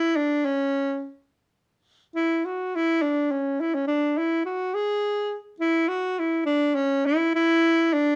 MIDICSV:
0, 0, Header, 1, 2, 480
1, 0, Start_track
1, 0, Tempo, 574163
1, 357, Time_signature, 6, 3, 24, 8
1, 6818, End_track
2, 0, Start_track
2, 0, Title_t, "Alto saxophone"
2, 0, Program_c, 0, 65
2, 0, Note_on_c, 0, 64, 77
2, 135, Note_on_c, 0, 62, 74
2, 147, Note_off_c, 0, 64, 0
2, 377, Note_on_c, 0, 61, 75
2, 389, Note_off_c, 0, 62, 0
2, 907, Note_off_c, 0, 61, 0
2, 1795, Note_on_c, 0, 64, 81
2, 2048, Note_on_c, 0, 66, 73
2, 2061, Note_off_c, 0, 64, 0
2, 2301, Note_on_c, 0, 64, 83
2, 2313, Note_off_c, 0, 66, 0
2, 2524, Note_on_c, 0, 62, 74
2, 2537, Note_off_c, 0, 64, 0
2, 2767, Note_on_c, 0, 61, 74
2, 2779, Note_off_c, 0, 62, 0
2, 3012, Note_on_c, 0, 64, 76
2, 3024, Note_off_c, 0, 61, 0
2, 3130, Note_on_c, 0, 61, 71
2, 3143, Note_off_c, 0, 64, 0
2, 3228, Note_off_c, 0, 61, 0
2, 3233, Note_on_c, 0, 62, 79
2, 3492, Note_on_c, 0, 64, 75
2, 3505, Note_off_c, 0, 62, 0
2, 3717, Note_off_c, 0, 64, 0
2, 3722, Note_on_c, 0, 66, 75
2, 3964, Note_on_c, 0, 68, 87
2, 3976, Note_off_c, 0, 66, 0
2, 4501, Note_off_c, 0, 68, 0
2, 4682, Note_on_c, 0, 64, 83
2, 4917, Note_on_c, 0, 66, 79
2, 4930, Note_off_c, 0, 64, 0
2, 5175, Note_on_c, 0, 64, 78
2, 5187, Note_off_c, 0, 66, 0
2, 5391, Note_off_c, 0, 64, 0
2, 5396, Note_on_c, 0, 62, 82
2, 5642, Note_on_c, 0, 61, 78
2, 5654, Note_off_c, 0, 62, 0
2, 5902, Note_on_c, 0, 64, 76
2, 5915, Note_off_c, 0, 61, 0
2, 6131, Note_off_c, 0, 64, 0
2, 6143, Note_on_c, 0, 64, 90
2, 6630, Note_on_c, 0, 62, 81
2, 6643, Note_off_c, 0, 64, 0
2, 6818, Note_off_c, 0, 62, 0
2, 6818, End_track
0, 0, End_of_file